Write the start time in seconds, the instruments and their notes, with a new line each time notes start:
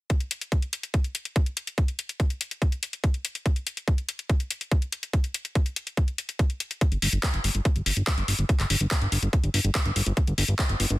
0.10 kick, closed hi-hat
0.20 closed hi-hat
0.31 closed hi-hat
0.41 closed hi-hat
0.52 kick, closed hi-hat
0.62 closed hi-hat
0.73 closed hi-hat
0.83 closed hi-hat
0.94 kick, closed hi-hat
1.04 closed hi-hat
1.15 closed hi-hat
1.25 closed hi-hat
1.36 kick, closed hi-hat
1.46 closed hi-hat
1.57 closed hi-hat
1.67 closed hi-hat
1.78 kick, closed hi-hat
1.88 closed hi-hat
1.99 closed hi-hat
2.09 closed hi-hat
2.20 kick, closed hi-hat
2.30 closed hi-hat
2.41 closed hi-hat
2.51 closed hi-hat
2.62 kick, closed hi-hat
2.72 closed hi-hat
2.83 closed hi-hat
2.93 closed hi-hat
3.04 kick, closed hi-hat
3.14 closed hi-hat
3.25 closed hi-hat
3.35 closed hi-hat
3.46 kick, closed hi-hat
3.56 closed hi-hat
3.67 closed hi-hat
3.77 closed hi-hat
3.88 kick, closed hi-hat
3.98 closed hi-hat
4.09 closed hi-hat
4.19 closed hi-hat
4.30 kick, closed hi-hat
4.40 closed hi-hat
4.50 closed hi-hat
4.61 closed hi-hat
4.71 kick, closed hi-hat
4.82 closed hi-hat
4.92 closed hi-hat
5.03 closed hi-hat
5.13 kick, closed hi-hat
5.24 closed hi-hat
5.34 closed hi-hat
5.45 closed hi-hat
5.55 kick, closed hi-hat
5.66 closed hi-hat
5.76 closed hi-hat
5.87 closed hi-hat
5.97 kick, closed hi-hat
6.08 closed hi-hat
6.18 closed hi-hat
6.29 closed hi-hat
6.39 kick, closed hi-hat
6.50 closed hi-hat
6.60 closed hi-hat
6.71 closed hi-hat
6.81 kick, closed hi-hat
6.92 analog synth bass G1, closed hi-hat
7.02 analog synth bass G1, open hi-hat
7.13 analog synth bass G1, closed hi-hat
7.23 kick, clap, closed hi-hat
7.34 analog synth bass G1, closed hi-hat
7.44 analog synth bass G1, open hi-hat
7.55 analog synth bass G1, closed hi-hat
7.65 kick, closed hi-hat
7.76 analog synth bass G1, closed hi-hat
7.86 analog synth bass G1, open hi-hat
7.97 analog synth bass G1, closed hi-hat
8.07 kick, clap, closed hi-hat
8.18 analog synth bass G1, closed hi-hat
8.28 analog synth bass G1, open hi-hat
8.39 analog synth bass G1, closed hi-hat
8.49 kick, closed hi-hat
8.60 analog synth bass G1, clap, closed hi-hat
8.70 analog synth bass G1, open hi-hat
8.81 analog synth bass G1, closed hi-hat
8.91 kick, clap, closed hi-hat
9.02 analog synth bass G1, closed hi-hat
9.12 analog synth bass G1, open hi-hat
9.23 analog synth bass G1, closed hi-hat
9.33 kick, closed hi-hat
9.44 analog synth bass G1, closed hi-hat
9.54 analog synth bass G1, open hi-hat
9.64 analog synth bass G1, closed hi-hat
9.75 kick, clap, closed hi-hat
9.85 analog synth bass G1, closed hi-hat
9.96 analog synth bass G1, open hi-hat
10.06 analog synth bass G1, closed hi-hat
10.17 kick, closed hi-hat
10.27 analog synth bass G1, closed hi-hat
10.38 analog synth bass G1, open hi-hat
10.48 analog synth bass G1
10.59 kick, clap, closed hi-hat
10.69 analog synth bass G1, closed hi-hat
10.80 analog synth bass G1, open hi-hat
10.90 analog synth bass G1, closed hi-hat